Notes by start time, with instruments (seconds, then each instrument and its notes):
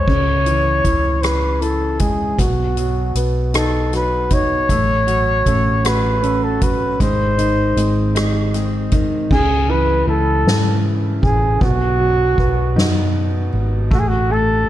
Already playing: felt piano G#3, flugelhorn C#5
0.07 fingered electric bass C#2, felt piano C#3, kick, crash
0.46 felt piano E3, closed hi-hat
0.84 fingered electric bass C#2, felt piano E4, kick, closed hi-hat
1.23 flugelhorn B4, cross-stick, closed hi-hat
1.61 felt piano E4, flugelhorn A4, closed hi-hat
1.99 felt piano G#3, flugelhorn G#4, kick, closed hi-hat
2.38 fingered electric bass B1, felt piano B2, flugelhorn F#4, kick, closed hi-hat
2.77 felt piano F#3, closed hi-hat
3.15 fingered electric bass B1, felt piano B3, closed hi-hat
3.54 felt piano D#4, flugelhorn A4, cross-stick, closed hi-hat
3.92 felt piano F#3, flugelhorn B4, cross-stick, closed hi-hat
4.30 felt piano D#4, flugelhorn C#5, kick, closed hi-hat
4.69 fingered electric bass A1, steel-string acoustic guitar F#3, felt piano A3, kick, closed hi-hat
5.07 steel-string acoustic guitar F#3, felt piano F#4, closed hi-hat
5.46 fingered electric bass A1, felt piano A3, steel-string acoustic guitar C#4, kick, closed hi-hat
5.84 steel-string acoustic guitar A3, felt piano F#4, flugelhorn B4, cross-stick, closed hi-hat
6.23 felt piano A3, steel-string acoustic guitar C#4, closed hi-hat
6.44 flugelhorn A4
6.61 steel-string acoustic guitar F#3, felt piano F#4, flugelhorn B4, kick, closed hi-hat
7.00 fingered electric bass G#1, steel-string acoustic guitar D#3, felt piano G#3, flugelhorn C5, kick, closed hi-hat
7.38 steel-string acoustic guitar D#3, felt piano D#4, closed hi-hat
7.76 fingered electric bass G#1, felt piano G#3, steel-string acoustic guitar C4, closed hi-hat
8.15 steel-string acoustic guitar G#3, felt piano D#4, cross-stick, closed hi-hat
8.54 felt piano G#3, steel-string acoustic guitar C4, cross-stick, closed hi-hat
8.92 steel-string acoustic guitar D#3, felt piano D#4, kick, closed hi-hat
9.30 fingered electric bass C#2, felt piano C#3, flugelhorn G#4, kick, crash
9.69 felt piano E3, flugelhorn B4, ride
10.07 fingered electric bass C#2, felt piano E4, flugelhorn A4, ride
10.46 fingered electric bass G#2, snare, ride
10.85 ride
11.22 fingered electric bass A1, flugelhorn G#4, kick, ride
11.61 fingered electric bass B1, felt piano B2, flugelhorn F#4, kick, ride
11.99 felt piano F#3, ride
12.38 fingered electric bass B1, felt piano B3, kick, ride
12.76 fingered electric bass F#2, felt piano D#4, snare, ride
13.15 ride
13.53 fingered electric bass G#1, ride
13.91 fingered electric bass A1, felt piano A3, flugelhorn F#4, kick, ride
13.99 flugelhorn G#4
14.08 flugelhorn F#4
14.30 felt piano A3, flugelhorn A4, ride